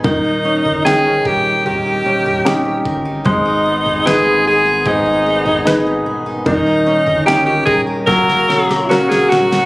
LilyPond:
<<
  \new Staff \with { instrumentName = "Alto saxophone" } { \time 4/4 \key dis \phrygian \tempo 4 = 75 dis'4 gis'8 g'8 g'4. r8 | dis'4 gis'8 gis'8 dis'4. r8 | dis'4 g'16 g'16 gis'8 ais'4 fis'16 gis'16 fis'8 | }
  \new Staff \with { instrumentName = "Grand piano" } { \time 4/4 \key dis \phrygian dis4 <cis' dis' g''>4 r4 <cis' dis' g'>4 | gis4 <dis' gis' b'>4 r4 <dis' gis' b'>4 | dis4 <cis' dis' g''>4 fis4 <cis' fis' ais'>4 | }
  \new Staff \with { instrumentName = "Steel-string acoustic guitar" } { \time 4/4 \key dis \phrygian <dis ais'>16 dis'16 cis'16 ais'16 dis'16 cis'16 ais'16 dis'16 <dis ais'>16 dis'16 cis'16 ais'16 dis'16 cis'16 ais'16 dis'16 | <gis, gis'>16 dis'16 b16 gis'16 dis'16 b16 gis'16 dis'16 <gis, gis'>16 dis'16 b16 gis'16 dis'16 b16 gis'16 dis'16 | <dis ais'>16 dis'16 cis'16 ais'16 dis'16 cis'16 ais'16 dis'16 <fis ais'>16 fis'16 cis'16 ais'16 fis'16 cis'16 ais'16 fis'16 | }
  \new Staff \with { instrumentName = "French horn section" } { \time 4/4 \key dis \phrygian << { r1 | <b gis'>1 | <cis' ais'>2 <ais fis'>2 | } \\ { r1 | dis1~ | dis2 cis2 | } >> }
  \new Staff \with { instrumentName = "Sub bass" } { \clef bass \time 4/4 \key dis \phrygian dis,,8. g,,8. dis,,4 dis,,4 g,,8 | gis,,2.~ gis,,8 e,,8 | dis,,8. g,,8. dis,,8 fis,,8 e,,4 dis,,8 | }
  \new DrumStaff \with { instrumentName = "Drums" } \drummode { \time 4/4 <bd tomfh>8. tomfh16 sn8 bd8 tomfh8. tomfh16 sn8 bd8 | <bd tomfh>8. tomfh16 sn4 <bd tomfh>8. tomfh16 sn4 | <bd tomfh>8. tomfh16 sn8 bd8 <bd sn>16 sn16 sn16 sn16 sn16 sn16 sn16 sn16 | }
>>